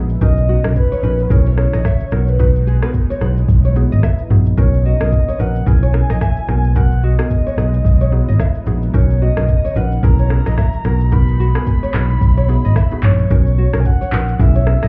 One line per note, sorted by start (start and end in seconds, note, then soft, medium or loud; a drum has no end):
0.00 0.16 A#1 medium
0.00 0.20 G#3 medium
0.00 0.16 B3 medium
0.00 1.27 B3 medium
0.00 0.16 D#4 medium
0.00 0.19 D#4 medium
0.00 0.20 E4 medium
0.00 0.16 F#4 medium
0.00 0.16 G#4 medium
0.10 shaker medium
0.21 0.56 B1 loud
0.21 2.10 C#3 medium
0.21 2.10 C#4 medium
0.21 0.61 C#4 loud
0.21 1.29 D#4 medium
0.21 0.61 D#4 medium
0.21 0.61 F#4 medium
0.21 0.61 A#4 loud
0.21 0.73 D#5 loud
0.21 kick loud
0.21 shaker medium
0.37 shaker soft
0.49 0.59 F#4 medium
0.64 0.74 B1 loud
0.64 0.84 C#4 medium
0.64 0.84 D#4 medium
0.64 0.84 F#4 medium
0.64 0.72 A#4 medium
0.64 0.84 A#4 medium
0.64 cross-stick loud
0.64 shaker soft
0.76 1.33 B4 loud
0.76 kick medium
0.76 shaker medium
0.92 0.99 C#5 medium
0.92 shaker medium
1.03 1.25 A#1 medium
1.03 1.25 C#4 medium
1.03 1.25 D#4 medium
1.03 1.25 F#4 medium
1.03 1.25 A#4 medium
1.03 1.14 B4 medium
1.03 shaker medium
1.19 shaker medium
1.30 1.65 B1 loud
1.30 2.11 F#3 medium
1.30 1.56 C#4 medium
1.30 2.11 E4 medium
1.30 1.56 E4 medium
1.30 1.56 G#4 medium
1.30 1.56 A#4 loud
1.30 1.58 C#5 loud
1.30 kick loud
1.30 shaker medium
1.46 1.54 C#5 medium
1.46 shaker medium
1.57 1.79 C#4 medium
1.57 1.79 E4 medium
1.57 1.79 G#4 medium
1.57 1.80 A#4 medium
1.57 2.30 C#5 loud
1.57 cross-stick loud
1.73 1.83 A#1 medium
1.73 1.81 D#5 medium
1.73 cross-stick medium
1.73 shaker medium
1.85 2.03 E5 medium
1.85 kick medium
1.85 cross-stick loud
1.85 shaker medium
2.00 shaker soft
2.11 2.79 B1 medium
2.11 4.55 G#3 medium
2.11 2.34 B3 medium
2.11 4.55 B3 medium
2.11 4.55 D#4 medium
2.11 2.34 D#4 medium
2.11 3.20 F#4 medium
2.11 2.34 F#4 medium
2.11 2.34 A#4 medium
2.11 cross-stick medium
2.11 shaker medium
2.28 2.83 B4 medium
2.28 shaker medium
2.39 2.79 B3 medium
2.39 2.79 D#4 medium
2.39 2.79 F#4 medium
2.39 2.79 B4 loud
2.39 kick loud
2.39 shaker medium
2.56 shaker soft
2.67 2.77 G#4 medium
2.67 shaker medium
2.82 3.02 B3 medium
2.82 3.02 D#4 medium
2.82 3.02 F#4 medium
2.82 3.02 A#4 medium
2.82 2.90 B4 medium
2.82 cross-stick loud
2.82 shaker soft
2.94 kick medium
2.94 shaker medium
3.10 3.22 C#5 medium
3.10 shaker medium
3.21 3.44 B1 medium
3.21 3.43 B3 medium
3.21 3.43 D#4 medium
3.21 4.56 E4 medium
3.21 3.43 F#4 medium
3.21 3.43 G#4 medium
3.21 3.32 B4 medium
3.21 cross-stick medium
3.21 shaker medium
3.37 shaker medium
3.48 3.83 B1 loud
3.48 kick loud
3.48 shaker medium
3.64 3.72 C#5 medium
3.64 shaker medium
3.76 3.97 B3 medium
3.76 3.98 D#4 medium
3.76 3.98 F#4 medium
3.76 3.98 G#4 medium
3.76 shaker soft
3.92 4.01 G#1 medium
3.92 3.99 D#5 medium
3.92 shaker medium
4.03 4.21 E5 medium
4.03 kick medium
4.03 cross-stick loud
4.03 shaker medium
4.18 shaker soft
4.30 4.53 A#1 medium
4.30 4.52 B3 medium
4.30 4.52 D#4 medium
4.30 4.52 F#4 medium
4.30 4.52 G#4 medium
4.30 mid tom medium
4.46 shaker medium
4.57 4.93 B1 loud
4.57 6.47 C#3 medium
4.57 6.47 A#3 medium
4.57 5.66 B3 medium
4.57 4.97 C#4 loud
4.57 4.97 D#4 medium
4.57 5.66 D#4 medium
4.57 4.97 F#4 medium
4.57 4.97 A#4 loud
4.57 4.84 C#5 loud
4.57 kick loud
4.57 shaker medium
4.74 shaker soft
4.85 4.96 F#4 medium
4.85 5.42 D#5 loud
5.00 5.10 B1 loud
5.00 5.20 C#4 medium
5.00 5.20 D#4 medium
5.00 5.20 F#4 medium
5.00 5.20 A#4 medium
5.00 5.09 A#4 medium
5.00 cross-stick loud
5.00 shaker medium
5.12 kick medium
5.12 shaker medium
5.28 5.36 C#5 medium
5.28 shaker medium
5.39 5.62 A#1 medium
5.39 5.61 C#4 medium
5.39 5.61 D#4 medium
5.39 5.61 F#4 medium
5.39 5.61 A#4 medium
5.39 5.50 B4 medium
5.39 5.67 F#5 loud
5.39 shaker medium
5.55 shaker medium
5.66 6.02 B1 loud
5.66 6.48 F#3 medium
5.66 5.92 C#4 medium
5.66 5.92 E4 medium
5.66 6.48 E4 medium
5.66 5.92 G#4 medium
5.66 5.92 A#4 loud
5.66 6.78 G#5 loud
5.66 kick loud
5.66 shaker medium
5.82 5.90 C#5 medium
5.82 shaker soft
5.94 6.15 C#4 medium
5.94 6.16 E4 medium
5.94 6.16 G#4 medium
5.94 6.16 A#4 medium
5.94 cross-stick loud
6.10 6.19 A#1 medium
6.10 6.18 D#5 medium
6.10 cross-stick loud
6.10 shaker medium
6.21 6.39 E5 medium
6.21 kick medium
6.21 cross-stick medium
6.21 shaker medium
6.36 shaker soft
6.48 7.15 B1 medium
6.48 8.92 G#3 medium
6.48 6.70 B3 medium
6.48 7.57 B3 medium
6.48 8.92 D#4 medium
6.48 6.70 D#4 medium
6.48 7.57 F#4 medium
6.48 6.70 F#4 medium
6.48 6.70 A#4 medium
6.48 cross-stick medium
6.48 shaker medium
6.64 shaker medium
6.76 7.15 B3 loud
6.76 7.15 D#4 medium
6.76 7.15 F#4 medium
6.76 7.15 A#4 loud
6.76 6.98 F#5 loud
6.76 kick loud
6.76 shaker medium
6.92 shaker soft
6.98 7.05 F#5 medium
7.03 7.14 F#4 medium
7.03 8.67 D#5 loud
7.19 7.38 B3 medium
7.19 7.38 D#4 medium
7.19 7.38 F#4 medium
7.19 7.27 G#4 medium
7.19 7.39 A#4 medium
7.19 cross-stick loud
7.19 shaker medium
7.30 kick medium
7.30 shaker medium
7.47 7.54 C#5 medium
7.47 shaker medium
7.57 7.80 B1 medium
7.57 7.79 B3 medium
7.57 10.01 B3 medium
7.57 7.79 D#4 medium
7.57 8.93 E4 medium
7.57 7.79 F#4 medium
7.57 7.80 G#4 medium
7.57 7.68 B4 medium
7.57 cross-stick medium
7.57 shaker medium
7.74 shaker medium
7.85 8.20 B1 medium
7.85 kick loud
7.85 shaker medium
8.01 8.09 C#5 medium
8.01 shaker medium
8.12 8.34 B3 medium
8.12 8.34 D#4 medium
8.12 8.34 F#4 medium
8.12 8.34 G#4 medium
8.28 8.37 G#1 medium
8.28 8.40 D#5 medium
8.28 shaker medium
8.40 8.58 E5 medium
8.40 kick medium
8.40 cross-stick loud
8.40 shaker medium
8.55 shaker soft
8.66 8.89 A#1 medium
8.66 8.88 B3 medium
8.66 8.88 D#4 medium
8.66 8.88 F#4 medium
8.66 8.89 G#4 medium
8.66 shaker medium
8.82 shaker medium
8.94 9.29 B1 loud
8.94 10.83 C#3 medium
8.94 10.02 A#3 medium
8.94 9.33 C#4 medium
8.94 9.33 D#4 medium
8.94 10.02 D#4 medium
8.94 9.33 F#4 medium
8.94 9.34 A#4 loud
8.94 9.20 C#5 medium
8.94 kick loud
8.94 shaker medium
9.10 shaker soft
9.22 9.32 F#4 medium
9.22 9.78 D#5 loud
9.37 9.46 B1 loud
9.37 9.56 C#4 medium
9.37 9.57 D#4 medium
9.37 9.57 F#4 medium
9.37 9.57 A#4 medium
9.37 9.45 A#4 medium
9.37 cross-stick loud
9.37 shaker medium
9.48 kick medium
9.48 shaker medium
9.65 9.72 C#5 medium
9.65 shaker medium
9.76 9.98 A#1 medium
9.76 9.97 C#4 medium
9.76 9.97 D#4 medium
9.76 9.98 F#4 medium
9.76 9.98 A#4 medium
9.76 9.86 B4 medium
9.76 10.06 F#5 medium
9.76 shaker medium
9.92 shaker medium
10.03 10.38 B1 loud
10.03 10.84 F#3 medium
10.03 10.84 A#3 medium
10.03 10.29 C#4 loud
10.03 10.29 E4 medium
10.03 10.84 E4 medium
10.03 10.29 G#4 medium
10.03 10.29 A#4 loud
10.03 11.15 A#5 loud
10.03 kick loud
10.03 shaker medium
10.19 10.27 C#5 medium
10.19 shaker medium
10.30 10.52 C#4 medium
10.30 10.52 E4 medium
10.30 10.52 G#4 medium
10.30 10.52 A#4 medium
10.30 cross-stick loud
10.46 10.56 A#1 medium
10.46 10.54 D#5 medium
10.46 cross-stick medium
10.46 shaker medium
10.58 10.76 E5 medium
10.58 kick medium
10.58 cross-stick loud
10.58 shaker medium
10.73 shaker soft
10.84 11.51 B1 medium
10.84 13.28 G#3 medium
10.84 11.07 B3 medium
10.84 13.28 B3 medium
10.84 11.07 D#4 medium
10.84 13.28 D#4 medium
10.84 11.93 F#4 medium
10.84 11.07 F#4 medium
10.84 11.07 A#4 medium
10.84 cross-stick medium
10.84 shaker medium
11.00 shaker medium
11.12 11.52 B3 medium
11.12 11.52 D#4 medium
11.12 11.52 F#4 medium
11.12 11.52 A#4 loud
11.12 11.40 B5 loud
11.12 kick loud
11.12 shaker medium
11.28 shaker soft
11.40 11.50 F#4 medium
11.40 13.00 B5 loud
11.40 shaker medium
11.55 11.75 B3 medium
11.55 11.75 D#4 medium
11.55 11.75 F#4 medium
11.55 11.63 G#4 medium
11.55 11.75 A#4 medium
11.55 cross-stick loud
11.55 shaker medium
11.67 kick medium
11.67 shaker medium
11.83 11.90 C#5 medium
11.83 shaker medium
11.94 12.16 B1 medium
11.94 12.16 B3 medium
11.94 12.16 D#4 medium
11.94 13.29 E4 medium
11.94 12.16 F#4 medium
11.94 12.16 G#4 medium
11.94 12.05 B4 medium
11.94 cross-stick medium
11.94 clap medium
11.94 shaker medium
12.10 shaker medium
12.21 12.56 B1 loud
12.21 kick loud
12.21 shaker medium
12.37 12.45 C#5 medium
12.37 shaker medium
12.48 12.70 B3 medium
12.48 12.70 D#4 medium
12.48 12.70 F#4 medium
12.48 12.70 G#4 medium
12.48 open hi-hat soft
12.48 shaker soft
12.64 12.74 G#1 medium
12.64 12.72 D#5 medium
12.64 shaker medium
12.76 12.94 E5 medium
12.76 kick medium
12.76 cross-stick loud
12.76 shaker medium
12.91 13.11 B3 medium
12.91 13.11 D#4 medium
12.91 13.11 F#4 medium
12.91 13.11 G#4 medium
12.91 shaker soft
13.03 13.25 A#1 medium
13.03 13.81 C#5 loud
13.03 clap medium
13.03 mid tom medium
13.19 shaker medium
13.30 13.65 B1 loud
13.30 13.70 C#4 loud
13.30 13.70 D#4 medium
13.30 13.70 F#4 medium
13.30 13.70 A#4 loud
13.30 kick loud
13.30 shaker medium
13.47 shaker soft
13.58 13.68 F#4 medium
13.73 13.83 B1 loud
13.73 13.93 C#4 medium
13.73 13.93 D#4 medium
13.73 13.93 F#4 medium
13.73 13.81 A#4 medium
13.73 13.93 A#4 medium
13.73 cross-stick loud
13.73 shaker medium
13.80 13.88 G#5 medium
13.85 14.42 F#5 loud
13.85 kick loud
13.85 shaker medium
14.01 14.08 C#5 medium
14.01 shaker medium
14.12 14.34 A#1 medium
14.12 14.34 C#4 medium
14.12 14.34 D#4 medium
14.12 14.34 F#4 medium
14.12 14.34 A#4 medium
14.12 14.23 B4 medium
14.12 clap medium
14.12 shaker medium
14.28 shaker medium
14.39 14.74 B1 loud
14.39 14.65 C#4 loud
14.39 14.65 E4 medium
14.39 14.65 G#4 medium
14.39 14.65 A#4 loud
14.39 14.88 E5 loud
14.39 kick loud
14.39 shaker medium
14.55 14.63 C#5 medium
14.55 shaker medium
14.67 14.88 C#4 medium
14.67 14.88 E4 medium
14.67 14.88 G#4 medium
14.67 14.88 A#4 medium
14.67 cross-stick loud
14.83 14.88 A#1 medium
14.83 14.88 D#5 medium
14.83 cross-stick loud
14.83 shaker medium